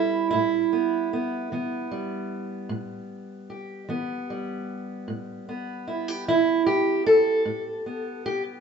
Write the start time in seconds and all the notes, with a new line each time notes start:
Already playing: G3 B3 E4
0.31 A2 E4
0.73 B3
1.13 B3
1.52 E3 B3
1.91 G3
2.69 A2
3.50 G4
3.89 E3 B3
4.30 G3
5.08 A2
5.49 B3
5.88 E4
6.08 G4
6.28 E3 E4
6.66 G4
7.06 A4
7.45 A2
7.86 B3
8.26 G4